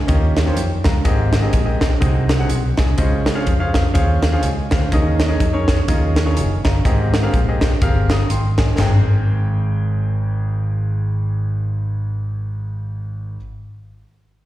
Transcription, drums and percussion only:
0.08 kick loud
0.08 closed hi-hat loud
0.37 snare loud
0.37 closed hi-hat medium
0.57 closed hi-hat loud
0.84 kick loud
0.84 snare loud
0.84 closed hi-hat medium
1.05 kick loud
1.05 closed hi-hat loud
1.33 snare loud
1.33 closed hi-hat medium
1.53 kick medium
1.53 closed hi-hat medium
1.81 kick medium
1.81 snare loud
1.81 closed hi-hat medium
2.02 kick loud
2.02 closed hi-hat loud
2.29 snare loud
2.29 closed hi-hat medium
2.49 closed hi-hat loud
2.77 kick loud
2.77 snare loud
2.77 closed hi-hat medium
2.98 kick loud
2.98 closed hi-hat loud
3.26 snare loud
3.26 closed hi-hat medium
3.47 kick medium
3.47 closed hi-hat medium
3.74 kick medium
3.74 snare loud
3.74 closed hi-hat medium
3.95 kick loud
3.95 closed hi-hat loud
4.22 snare loud
4.22 closed hi-hat medium
4.43 closed hi-hat loud
4.71 kick loud
4.71 snare loud
4.71 closed hi-hat medium
4.92 kick loud
4.92 closed hi-hat loud
5.20 snare loud
5.20 closed hi-hat medium
5.40 kick medium
5.40 closed hi-hat loud
5.68 kick loud
5.68 snare loud
5.68 closed hi-hat medium
5.88 kick loud
5.88 closed hi-hat loud
6.16 snare loud
6.16 closed hi-hat medium
6.37 closed hi-hat loud
6.65 kick loud
6.65 snare loud
6.65 closed hi-hat medium
6.85 kick loud
6.85 closed hi-hat loud
7.14 snare loud
7.14 closed hi-hat medium
7.34 kick medium
7.34 closed hi-hat medium
7.61 kick medium
7.61 snare loud
7.61 closed hi-hat medium
7.82 kick loud
7.82 closed hi-hat loud
8.10 snare loud
8.10 closed hi-hat medium
8.30 closed hi-hat loud
8.58 kick loud
8.58 snare loud
8.58 closed hi-hat medium
8.78 snare loud
8.78 floor tom loud
8.78 splash medium

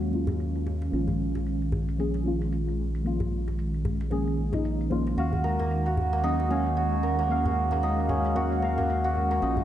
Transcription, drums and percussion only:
0.02 shaker soft
0.13 djembe tone soft
0.27 djembe tone medium
0.27 djembe bass medium
0.27 shaker medium
0.40 shaker medium
0.55 shaker soft
0.66 djembe tone medium
0.82 djembe slap soft
0.82 shaker medium
0.93 shaker soft
1.08 djembe bass medium
1.08 shaker soft
1.35 djembe tone medium
1.35 shaker medium
1.46 shaker soft
1.62 shaker soft
1.72 djembe bass medium
1.88 shaker medium
1.99 shaker medium
2.14 djembe slap soft
2.14 shaker soft
2.41 shaker medium
2.52 shaker medium
2.68 shaker soft
2.94 shaker medium
3.06 shaker soft
3.20 djembe bass medium
3.20 shaker soft
3.47 djembe tone medium
3.47 shaker medium
3.59 shaker medium
3.74 shaker soft
3.85 djembe bass medium
4.01 djembe slap soft
4.01 shaker medium
4.11 djembe tone medium
4.11 shaker soft
4.27 shaker soft
4.37 djembe tone soft
4.53 djembe tone medium
4.53 djembe bass medium
4.53 shaker medium
4.65 shaker soft
4.80 shaker soft
4.91 djembe tone medium
5.07 djembe slap soft
5.07 shaker medium
5.18 shaker soft
5.33 djembe bass medium
5.33 shaker soft
5.59 djembe tone medium
5.59 shaker medium
5.71 shaker soft
5.86 shaker soft
5.97 djembe bass medium
6.13 shaker medium
6.24 shaker soft
6.39 djembe slap soft
6.39 shaker soft
6.66 shaker medium
6.77 shaker soft
6.93 shaker soft
7.19 shaker medium
7.30 shaker soft
7.45 djembe bass medium
7.45 shaker soft
7.71 djembe tone medium
7.71 shaker medium
7.83 shaker soft
7.99 shaker soft
8.09 djembe bass medium
8.25 djembe slap soft
8.25 shaker medium
8.36 djembe tone medium
8.36 shaker soft
8.52 shaker soft
8.63 djembe tone soft
8.78 djembe tone soft
8.78 djembe bass medium
8.78 shaker medium
8.89 shaker soft
9.05 shaker soft
9.15 djembe tone medium
9.31 djembe slap soft
9.31 shaker medium
9.42 shaker soft
9.57 djembe bass medium
9.57 shaker soft

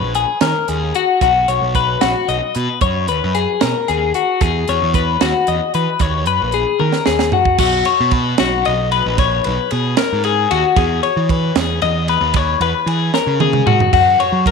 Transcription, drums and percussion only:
0.15 closed hi-hat medium
0.41 snare medium
0.41 closed hi-hat medium
0.68 closed hi-hat medium
0.95 closed hi-hat medium
1.21 kick medium
1.21 closed hi-hat medium
1.48 closed hi-hat medium
1.75 kick medium
1.75 closed hi-hat medium
2.01 snare loud
2.01 closed hi-hat medium
2.28 closed hi-hat medium
2.55 closed hi-hat medium
2.81 kick medium
2.81 closed hi-hat medium
3.08 closed hi-hat medium
3.35 closed hi-hat medium
3.61 snare medium
3.61 closed hi-hat medium
3.88 closed hi-hat medium
4.14 closed hi-hat medium
4.41 kick medium
4.41 closed hi-hat medium
4.68 closed hi-hat medium
4.94 kick medium
4.94 closed hi-hat medium
5.21 snare loud
5.21 closed hi-hat medium
5.47 closed hi-hat medium
5.74 closed hi-hat medium
5.99 kick medium
5.99 closed hi-hat medium
6.26 closed hi-hat medium
6.52 closed hi-hat medium
6.79 high tom soft
6.93 snare medium
7.06 snare medium
7.19 snare medium
7.32 floor tom medium
7.45 kick medium
7.58 kick loud
7.58 crash loud
7.85 ride medium
8.11 kick medium
8.11 ride medium
8.38 snare loud
8.38 ride medium
8.65 ride medium
8.92 ride medium
9.18 kick medium
9.18 ride medium
9.44 ride medium
9.71 ride medium
9.97 snare loud
9.97 ride loud
10.24 ride medium
10.51 ride medium
10.76 kick loud
10.76 ride medium
11.03 ride medium
11.29 kick medium
11.29 ride medium
11.56 snare loud
11.56 ride medium
11.82 ride medium
12.08 ride medium
12.34 kick loud
12.34 ride medium
12.61 ride medium
12.87 ride medium
13.14 snare medium
13.40 high tom medium
13.53 mid tom medium
13.67 mid tom loud
13.80 floor tom medium
13.93 kick medium
13.93 crash medium
14.20 ride medium
14.46 kick medium
14.46 ride medium

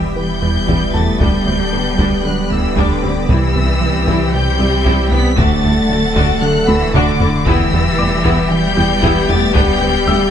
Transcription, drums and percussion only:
0.69 taiko medium
1.20 taiko medium
1.99 taiko medium
2.77 taiko medium
3.29 taiko medium
4.08 taiko medium
4.86 taiko medium
5.38 taiko loud
6.16 taiko medium
6.68 taiko high medium
6.94 taiko mid loud
7.20 taiko low loud
7.46 taiko loud
8.25 taiko medium
9.03 taiko medium
9.55 taiko loud

